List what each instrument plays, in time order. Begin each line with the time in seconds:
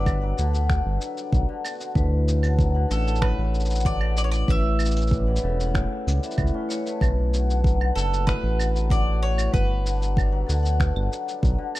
Already playing: analog synth bass G1, hammered dulcimer D3 F#3 A3, mandolin D5
0.06 hammered dulcimer G3, kick, cabasa, claves
0.21 hammered dulcimer F#3, vibraphone F#5
0.37 analog synth bass D2, hammered dulcimer D3, vibraphone A4, cabasa
0.53 hammered dulcimer B2, vibraphone F#5, cabasa
0.70 hammered dulcimer D3, finger snap, kick, cabasa
0.86 analog synth bass G1
1.01 hammered dulcimer F#3, cabasa
1.17 hammered dulcimer G3, cabasa
1.32 analog synth bass B1, hammered dulcimer F#3, kick, cabasa
1.49 hammered dulcimer D3
1.64 hammered dulcimer B2, cabasa, claves
1.80 hammered dulcimer D3, cabasa
1.95 analog synth bass D2, hammered dulcimer A2, vibraphone B4, kick, cabasa
2.27 hammered dulcimer C#3, cabasa
2.43 hammered dulcimer D3, cabasa, claves
2.59 hammered dulcimer F#3, kick, cabasa
2.74 hammered dulcimer D3, vibraphone F#5
2.89 analog synth bass A1, hammered dulcimer C#3, vibraphone A4, mandolin A4, cabasa
3.06 hammered dulcimer A2, vibraphone F#5, cabasa
3.15 cabasa
3.22 hammered dulcimer C#3, mandolin B4, finger snap, kick, claves
3.39 analog synth bass A1
3.54 hammered dulcimer D3, cabasa
3.60 cabasa
3.65 cabasa
3.70 hammered dulcimer F#3, cabasa
3.75 cabasa
3.80 cabasa
3.85 hammered dulcimer D3, mandolin D5, kick
4.01 hammered dulcimer C#3, claves
4.17 hammered dulcimer A2, mandolin D5, cabasa
4.24 mandolin C#5
4.31 hammered dulcimer C#3, mandolin D5, cabasa
4.48 analog synth bass A1, hammered dulcimer A2, vibraphone B4, mandolin E5, kick, cabasa
4.79 hammered dulcimer C#3, cabasa, claves
4.85 cabasa
4.91 cabasa
4.96 hammered dulcimer E3, cabasa
5.01 cabasa
5.07 cabasa
5.11 hammered dulcimer G3, kick, cabasa
5.27 hammered dulcimer E3, vibraphone F#5
5.36 cabasa
5.43 analog synth bass E1, hammered dulcimer C#3, vibraphone A4
5.60 hammered dulcimer A2, vibraphone F#5, cabasa
5.75 hammered dulcimer C#3, finger snap, kick, cabasa
6.07 analog synth bass C#2, hammered dulcimer G3, cabasa
6.23 hammered dulcimer E3, vibraphone E5, cabasa
6.31 cabasa
6.38 analog synth bass C#2, hammered dulcimer A2, kick, cabasa, claves
6.47 cabasa
6.54 hammered dulcimer C#4
6.69 hammered dulcimer C#3, vibraphone C#5, cabasa
6.86 hammered dulcimer A3, vibraphone B4, cabasa
7.00 analog synth bass B1, hammered dulcimer A2, vibraphone B4, kick, cabasa, claves
7.33 hammered dulcimer B2, cabasa
7.49 hammered dulcimer D3, cabasa
7.64 hammered dulcimer F#3, kick, cabasa
7.80 hammered dulcimer D3, vibraphone F#5, claves
7.95 analog synth bass F#1, hammered dulcimer B2, mandolin A4, vibraphone A4, cabasa
8.12 hammered dulcimer A2, vibraphone F#5, cabasa
8.27 hammered dulcimer B2, mandolin B4, finger snap, kick, cabasa
8.43 analog synth bass A1
8.59 hammered dulcimer D3, cabasa, claves
8.75 hammered dulcimer F#3, cabasa
8.90 hammered dulcimer D3, mandolin D5, kick, cabasa
9.06 hammered dulcimer B2
9.22 hammered dulcimer A2, mandolin C#5
9.37 hammered dulcimer B2, cabasa, claves
9.52 analog synth bass G1, hammered dulcimer B2, vibraphone B4, mandolin B4, kick, cabasa
9.85 hammered dulcimer D3, cabasa
10.01 hammered dulcimer F#3, cabasa
10.16 hammered dulcimer G3, kick, cabasa, claves
10.32 hammered dulcimer F#3, vibraphone F#5
10.47 analog synth bass D2, hammered dulcimer D3, vibraphone A4, cabasa
10.63 hammered dulcimer B2, vibraphone F#5, cabasa
10.79 hammered dulcimer D3, finger snap, kick, cabasa
10.96 analog synth bass G1, claves
11.11 hammered dulcimer F#3, cabasa
11.27 hammered dulcimer G3, cabasa
11.43 analog synth bass B1, hammered dulcimer F#3, kick, cabasa
11.58 hammered dulcimer D3
11.74 hammered dulcimer B2, cabasa, claves